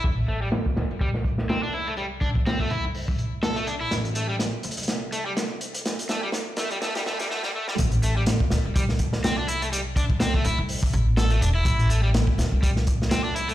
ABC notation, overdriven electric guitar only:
X:1
M:4/4
L:1/16
Q:"Swing 16ths" 1/4=124
K:Am
V:1 name="Overdriven electric guitar"
z2 A, G, z4 G, z3 C D E A, | G, z D z C A, E z4 z A A, D E | z2 A, G, z6 A, G, z4 | z2 A, G, z2 A, G, A, G, A, G, A, G, A, G, |
z2 A, G, z4 G, z3 C D E A, | G, z D z C A, E z4 z A A, D E- | E2 A, G, z4 G, z3 C D E A, |]